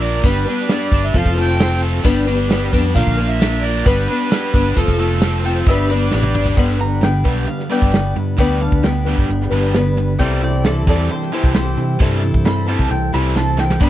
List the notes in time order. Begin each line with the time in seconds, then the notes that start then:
Already playing: A#1 A#2 F3 A#3 D4 F4 A#4 D5
0.00 A#4 D5, ride, shaker
0.23 G1 G2 D3 G3 B3 D4 G4 B4 D5, kick, ride, shaker
0.45 G3 B3 D4 B4, ride, shaker
0.68 G3 B3 D4 B4 D5, snare, ride, shaker
0.91 G1 D4, kick, ride, shaker
1.04 E5
1.13 F1 F3 C4 F4 A4 C5 F5, kick, ride, shaker
1.26 F1, kick, snare
1.35 A3 C4 F4 A4, ride, shaker
1.40 G5
1.59 C4, snare, ride, shaker
1.82 A4, ride, shaker
2.03 G1 G2 D3 G3 B3 D4 G4 B4, kick, ride, shaker
2.25 G3 B3 D4 B4, ride, shaker
2.49 G3 B3 D4 B4, snare, ride, shaker
2.71 F2 G3 B3 D4 B4, kick, ride, shaker
2.94 A#1 A#2 D3 F3 A#3 D4 F4 A#4 F5, kick, ride, shaker
3.07 A#1, kick
3.17 F3 A#3 D4 A#4, ride, shaker
3.28 E5
3.40 D4, snare, ride, shaker
3.62 A#4 D5, ride, shaker
3.84 G1 G2 D3 G3 B3 D4 G4 B4, kick, ride, shaker
4.08 G3 B3 D4 B4, ride, shaker
4.30 G3 B3 D4 B4, snare, ride, shaker
4.53 G1 G3 B3 D4 B4, kick, ride, shaker
4.75 F1 F3 C4 F4 A4 C5, kick, ride, shaker
4.88 F1, kick, snare
4.98 A3 C4 F4 A4, ride, shaker
5.21 C4, snare, ride, shaker
5.43 C4 F4 A4 G5, ride, shaker
5.66 G1 G2 D3 G3 B3 D4 G4 B4 E5, kick, ride, shaker
5.89 G3 B3 D4 B4 D5, ride, shaker
6.11 A1 G3 B3 D4 B4 D5, snare, shaker
6.23 high tom
6.33 G1 D4, mid tom, shaker
6.46 floor tom
6.56 G1 G2 D3 G3 B3 D4 G4 B4, kick, closed hi-hat
6.80 G2 D3 A#5, closed hi-hat
7.01 G2 D3 G3 B3 D4 B4 G5, snare, closed hi-hat
7.24 B1 G2 D3 G3 B3 D4 B4, kick, closed hi-hat
7.47 G2 D3 F5, closed hi-hat
7.60 snare
7.70 G2 D3 G3 B3 D4 B4 D5 G5, closed hi-hat
7.82 G1, kick
7.92 G2 D3 G3 B3 D4 B4, snare, closed hi-hat
8.16 G2 D3, closed hi-hat
8.37 D2 G2 D3 G3 B3 D4 B4 D5 G5, kick, closed hi-hat
8.60 G2 D3 F5 A5, closed hi-hat
8.72 D2, kick
8.83 G2 D3 G3 B3 D4 B4 G5, snare, closed hi-hat
9.05 G2 D3 G3 B3 D4 B4, closed hi-hat
9.17 G1, kick
9.28 G1 G2 D3, closed hi-hat
9.41 snare
9.50 G1 G2 D3 G3 B3 D4 B4, closed hi-hat
9.73 G2 D3 G3 B3 D4 B4, snare, closed hi-hat
9.97 G2 D3, closed hi-hat
10.19 C2 C3 E3 G3 C4 E4 G4 A4 D5 G5, kick, closed hi-hat
10.42 C3 E3 D5 G5, closed hi-hat
10.64 C3 E3 G3 C4 E4 A4 D5, snare, closed hi-hat
10.87 E2 C3 E3 G3 C4 E4 A4 D5, kick, closed hi-hat
11.10 C3 E3 G4 C5, closed hi-hat
11.22 snare
11.31 C3 E3 G3 C4 E4 G4 A4 C5, closed hi-hat
11.44 C2, kick
11.54 C3 E3 G3 C4 E4 G4 A4 C5, snare, closed hi-hat
11.77 C3 E3, closed hi-hat
11.99 G2 C3 E3 G3 C4 E4 A4, kick, closed hi-hat
12.23 C3 E3, closed hi-hat
12.34 G2, kick
12.44 C3 E3 G3 C4 E4 A4 B5, snare, closed hi-hat
12.66 C3 E3 G3 C4 E4 A4 A5, closed hi-hat
12.79 C2, kick
12.90 C2 C3 E3 G5, closed hi-hat
13.12 C2 C3 E3 G3 C4 E4 A4 B5, closed hi-hat
13.34 C3 E3 G3 C4 E4 A4 A5, snare
13.57 C3 E3 G5, snare
13.70 snare
13.80 G1 G2 D3 G3 B3 D4 G4 B4, kick, closed hi-hat, shaker
13.84 B5